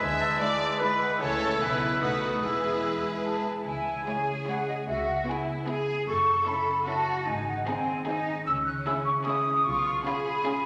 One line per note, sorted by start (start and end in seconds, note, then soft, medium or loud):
0.00 0.33 D2 medium
0.00 0.33 D3 medium
0.00 1.23 D3 medium
0.00 1.18 G#3 medium
0.00 1.22 G#3 medium
0.00 1.23 B3 soft
0.00 1.18 E4 medium
0.00 1.40 E4 medium
0.00 0.60 G#4 medium
0.00 0.41 B4 soft
0.00 1.18 B4 medium
0.00 2.03 E5 medium
0.00 0.41 E5 medium
0.00 0.20 G#5 medium
0.00 1.18 E6 medium
0.20 1.00 G#3 medium
0.20 0.80 A5 loud
0.40 0.71 G#3 medium
0.40 0.71 E4 medium
0.40 0.71 B4 medium
0.40 0.80 B4 medium
0.40 0.80 D5 medium
0.61 1.23 G#4 medium
0.81 1.11 G#3 medium
0.81 1.11 E4 medium
0.81 1.11 B4 medium
0.81 1.20 B4 medium
0.81 1.01 B5 loud
1.01 1.23 G#3 medium
1.01 1.22 F#5 medium
1.20 1.58 C#2 medium
1.20 1.58 C#3 medium
1.20 1.63 C#3 medium
1.20 1.58 E3 medium
1.20 1.60 A3 medium
1.20 1.64 A3 medium
1.20 1.58 E4 medium
1.20 2.00 E4 medium
1.20 1.58 A4 medium
1.20 1.63 C#5 medium
1.20 1.60 C#5 medium
1.20 1.41 G#5 medium
1.20 2.00 E6 medium
1.41 1.80 E4 medium
1.41 1.63 C#5 medium
1.41 1.50 A5 medium
1.60 2.01 B1 medium
1.60 2.00 B2 medium
1.60 2.01 B2 medium
1.60 2.01 E3 medium
1.60 2.01 B3 medium
1.60 3.47 B3 medium
1.60 2.01 E4 medium
1.60 2.01 B4 medium
1.60 2.03 B4 medium
1.60 1.70 G#5 medium
1.81 2.03 E4 medium
1.81 2.03 G#4 medium
1.81 1.91 E5 medium
2.00 2.42 B1 medium
2.00 2.42 B2 medium
2.00 2.45 B2 medium
2.00 2.42 A3 medium
2.00 2.42 D#4 medium
2.00 2.43 D#4 medium
2.00 2.41 F#4 medium
2.00 2.42 A4 medium
2.00 2.42 B4 medium
2.00 2.42 F#5 medium
2.00 2.43 D#6 medium
2.23 2.45 D#4 soft
2.23 2.45 A4 medium
2.41 3.46 E1 medium
2.41 3.46 E2 medium
2.41 3.69 E3 medium
2.41 3.44 G#3 medium
2.41 3.47 G#3 medium
2.41 3.44 E4 medium
2.41 3.47 E4 medium
2.41 3.44 G#4 medium
2.41 3.44 B4 medium
2.41 3.45 E5 medium
2.41 3.04 E6 soft
2.64 3.45 E4 soft
2.84 3.25 B4 soft
3.04 6.95 E5 soft
3.04 3.10 G#5 medium
3.24 3.69 B4 soft
3.24 3.65 A5 medium
3.46 4.27 E4 soft
3.66 3.98 C#2 medium
3.66 4.86 C#3 medium
3.66 4.04 E4 medium
3.66 4.46 G#5 loud
3.87 5.07 G#3 soft
4.06 4.37 G#3 medium
4.06 4.90 C#4 medium
4.06 4.37 E4 medium
4.06 4.86 G#4 medium
4.06 4.38 C#5 medium
4.28 4.67 E4 medium
4.47 4.77 G#3 medium
4.47 4.77 E4 medium
4.47 5.67 G#4 medium
4.47 4.77 C#5 medium
4.47 4.67 F#5 medium
4.67 5.47 E4 soft
4.67 4.73 D#5 medium
4.87 5.20 C#2 medium
4.87 6.10 C#3 medium
4.87 5.27 F#4 medium
4.87 5.07 E5 medium
5.07 6.10 G#3 soft
5.07 5.13 F#5 medium
5.26 5.57 B3 medium
5.26 6.10 B3 soft
5.26 5.58 E4 medium
5.26 5.68 E4 medium
5.26 5.58 G#4 medium
5.26 5.34 G#5 medium
5.48 5.87 E4 medium
5.66 5.97 B3 medium
5.66 5.97 E4 medium
5.66 5.97 G#4 medium
5.66 6.07 G#4 medium
5.66 6.10 G#4 medium
5.88 6.68 E4 medium
6.07 6.40 F#1 medium
6.07 7.30 F#2 medium
6.07 6.86 A4 medium
6.07 6.45 C#6 loud
6.29 7.31 C#3 soft
6.47 6.78 C#4 medium
6.47 7.30 C#4 soft
6.47 6.78 E4 medium
6.47 6.77 A4 medium
6.47 6.88 B5 medium
6.69 7.08 E4 medium
6.87 7.17 C#4 medium
6.87 7.18 E4 medium
6.87 7.27 F#4 medium
6.87 7.17 A4 medium
6.87 7.30 A4 medium
6.87 7.27 A5 medium
7.09 7.30 E4 medium
7.28 7.59 G#1 medium
7.28 8.49 G#2 medium
7.28 7.68 D#4 medium
7.28 7.48 G#5 loud
7.47 8.49 D#3 medium
7.47 7.67 F#5 medium
7.66 7.97 C4 medium
7.66 8.06 C4 medium
7.66 8.49 C4 medium
7.66 7.98 D#4 medium
7.66 7.97 G#4 medium
7.66 8.25 G#5 medium
7.88 8.27 D#4 medium
8.06 8.37 C4 medium
8.06 8.46 D#4 medium
8.06 8.38 D#4 medium
8.06 8.36 G#4 medium
8.06 9.26 G#4 medium
8.29 8.49 D#4 medium
8.45 8.78 C#2 medium
8.45 9.68 C#3 medium
8.45 9.63 C#4 medium
8.45 8.51 E6 loud
8.65 10.66 G#3 medium
8.65 8.71 F#6 loud
8.86 9.16 C#4 medium
8.86 10.05 C#4 medium
8.86 9.17 E4 medium
8.86 9.16 G#4 medium
8.86 8.92 E6 loud
9.05 9.46 E4 medium
9.05 9.11 C#6 medium
9.25 9.56 C#4 medium
9.25 9.56 E4 medium
9.25 9.56 G#4 medium
9.25 10.45 G#4 medium
9.25 9.64 D#6 loud
9.47 9.68 E4 medium
9.64 9.98 B1 medium
9.64 10.66 B2 medium
9.64 10.05 F4 medium
9.64 10.05 C#6 loud
9.87 10.66 B3 medium
10.05 10.35 C#4 medium
10.05 10.66 C#4 medium
10.05 10.35 F4 medium
10.05 10.36 G#4 medium
10.05 10.66 G#4 medium
10.05 10.64 B5 medium
10.26 10.65 F4 medium
10.45 10.66 C#4 medium
10.45 10.66 F4 medium
10.45 10.66 G#4 medium